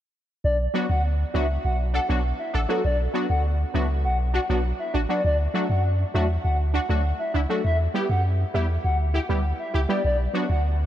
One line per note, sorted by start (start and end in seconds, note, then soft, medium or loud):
0.44 0.67 B1 loud
0.44 0.57 D5 loud
0.74 0.86 F#3 medium
0.74 0.86 B3 medium
0.74 0.86 D4 medium
0.74 0.86 F#4 medium
0.89 1.24 D2 loud
0.89 1.02 F#5 medium
1.34 1.57 C#2 loud
1.34 1.46 F#3 medium
1.34 1.46 B3 medium
1.34 1.46 D4 medium
1.34 1.47 F#4 medium
1.34 1.47 E5 medium
1.64 1.99 B1 medium
1.64 1.77 F#5 medium
1.94 2.00 D4 medium
1.94 2.00 A4 medium
1.94 2.07 F#5 medium
2.09 2.32 B1 medium
2.09 2.21 F#3 medium
2.09 2.21 B3 medium
2.09 2.21 D4 medium
2.09 2.21 F#4 medium
2.39 2.52 E5 medium
2.53 2.66 A1 medium
2.53 2.60 D4 medium
2.53 2.60 A4 medium
2.68 2.81 F#3 medium
2.68 2.81 B3 medium
2.68 2.81 D4 medium
2.68 2.81 F#4 medium
2.68 2.82 A4 medium
2.84 3.07 B1 loud
2.84 2.97 D5 loud
3.13 3.26 F#3 medium
3.13 3.26 B3 medium
3.13 3.26 D4 medium
3.13 3.26 F#4 medium
3.29 3.64 D2 medium
3.29 3.42 F#5 medium
3.74 4.06 C#2 medium
3.74 3.86 F#3 medium
3.74 3.86 B3 medium
3.74 3.86 D4 medium
3.74 3.86 F#4 medium
3.74 3.87 E5 medium
4.04 4.39 B1 medium
4.04 4.17 F#5 medium
4.33 4.40 D4 medium
4.33 4.40 F#4 medium
4.33 4.47 F#5 medium
4.49 4.72 B1 medium
4.49 4.61 F#3 medium
4.49 4.61 B3 medium
4.49 4.61 D4 medium
4.49 4.62 F#4 medium
4.79 4.92 E5 medium
4.94 5.06 A1 medium
4.94 5.00 D4 medium
4.94 5.00 F#4 medium
5.09 5.21 F#3 medium
5.09 5.21 B3 medium
5.09 5.21 D4 medium
5.09 5.21 F#4 medium
5.09 5.22 D5 medium
5.24 5.47 D2 loud
5.24 5.37 D5 loud
5.54 5.66 F#3 medium
5.54 5.66 A3 medium
5.54 5.66 D4 medium
5.54 5.66 F#4 medium
5.69 6.04 F#2 loud
5.69 5.82 F#5 medium
6.14 6.37 E2 medium
6.14 6.26 F#3 medium
6.14 6.26 A3 medium
6.14 6.26 D4 medium
6.14 6.27 F#4 medium
6.14 6.27 E5 medium
6.44 6.79 D2 medium
6.44 6.57 F#5 medium
6.73 6.80 D4 medium
6.73 6.80 F#4 medium
6.73 6.87 F#5 medium
6.89 7.12 D2 loud
6.89 7.01 F#3 medium
6.89 7.01 A3 medium
6.89 7.01 D4 medium
6.89 7.01 F#4 medium
7.19 7.32 E5 medium
7.34 7.46 C#2 medium
7.34 7.40 D4 medium
7.34 7.41 E4 medium
7.49 7.61 F#3 medium
7.49 7.61 A3 medium
7.49 7.61 D4 medium
7.49 7.62 F#4 medium
7.49 7.62 A4 medium
7.64 7.87 E2 loud
7.64 7.77 E5 loud
7.94 8.06 G3 medium
7.94 8.06 B3 medium
7.94 8.06 E4 medium
7.94 8.07 G4 medium
8.09 8.44 F#2 loud
8.09 8.22 F#5 medium
8.54 8.77 E2 medium
8.54 8.66 G3 medium
8.54 8.66 B3 medium
8.54 8.66 E4 medium
8.54 8.67 G4 medium
8.54 8.67 E5 medium
8.84 9.19 D2 medium
8.84 8.97 F#5 medium
9.14 9.20 E4 medium
9.14 9.21 G4 medium
9.14 9.27 F#5 medium
9.29 9.52 D2 medium
9.29 9.41 G3 medium
9.29 9.41 B3 medium
9.29 9.41 E4 medium
9.29 9.42 G4 medium
9.59 9.72 E5 medium
9.74 9.86 C#2 medium
9.74 9.80 E4 medium
9.74 9.80 G4 medium
9.89 10.01 G3 medium
9.89 10.01 B3 medium
9.89 10.01 E4 medium
9.89 10.01 G4 medium
9.89 10.02 D5 medium
10.04 10.27 B1 loud
10.04 10.17 D5 loud
10.33 10.46 F#3 medium
10.33 10.46 B3 medium
10.33 10.46 D4 medium
10.33 10.46 F#4 medium
10.49 10.84 D2 loud
10.49 10.62 F#5 medium